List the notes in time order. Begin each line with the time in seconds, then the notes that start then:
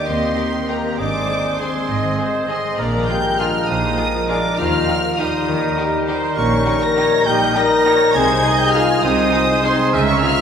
Already playing: D#3 A#3 D#4 G4 A#4
0.06 D#2 D#3 C4 C5 D#5 C6
0.23 A#3
0.36 D#4 G4 A#4
0.54 A#4
0.69 D#3 A#3 G4 A#4 A#5
0.85 D#4
0.98 G#1 G#2 G#3 C4 D4 G#4 C5 D5 D6
1.14 D#3
1.28 G#3 G#4
1.45 G#4
1.59 G#3 C4 D#4 G#4 C5 C6
1.75 G#3
1.89 G#1 G#2 D#5
2.04 D#3
2.18 G#3 G#4 C5
2.34 G#4
2.48 G#3 C4 G#4 C5 D#5 C6
2.64 G#3
2.79 A#1 A#2 G#3 A#3 D4 A#4 D5 A#5
2.94 F3
3.07 G#3 F4 G4 G#4 A#4 G5 G6
3.25 F4
3.39 G#3 D4 F4 G#4 A#4 F5 F6
3.55 G#3
3.67 A#1 A#2 D#4 C5 D#5 D#6
3.84 F3
3.98 G#3 F4 G#4 A#4
4.15 F4
4.28 G#3 D4 F4 G#4 A#4 D5 D6
4.45 G#3
4.57 D#2 D#3 G3 D#4 F4 A#4 C5 F5 F6
4.73 A#3
4.88 D#4 G4 A#4
5.03 A#4
5.18 G3 D#4 G4 A#4 C5 D#5 D#6
5.34 D#4
5.47 D#2 D#3 A#4
5.62 A#3
5.78 D#4 G4
5.94 A#4
6.08 D#4 G4 C5
6.22 D#4
6.36 A#1 A#2 G3 C#4 D#4 A#4 C#5 C#6
6.51 G3
6.66 A#3 D#4 G4
6.81 G4 A#4 A#5 A#6
6.97 D#4 G4 C#5
7.12 A#3
7.25 A#1 A#2 G3 D#4 G4 A#4 D#5 G5 G6
7.41 G3
7.55 G3 A#3 D#4 G4 A#4 A#5 A#6
7.71 G4
7.86 D#4 G4 C#5
8.01 A#3
8.14 C2 C3 G#3 D#4 G#4 C5 G#5 G#6
8.29 C4
8.43 G#3 D#4 G#4 D#5
8.59 G4 G#4 G5 G6
8.74 D#4 F4 G#4 F5 F6
8.89 G#3
9.02 C2 C3 G#3 D#4 G#4 C5 D#5 D#6
9.18 C4
9.32 G#3 D#4 G#4 C5
9.49 G#4
9.62 G#3 C4 D#4 G#4 C5 C6
9.79 G#3
9.92 C#2 C#3 G#3 C#4 G#4 A#4 E5 G#5
10.07 G#3 C#4 C#5 C#6
10.21 A#3 F4 G#4 F5 F6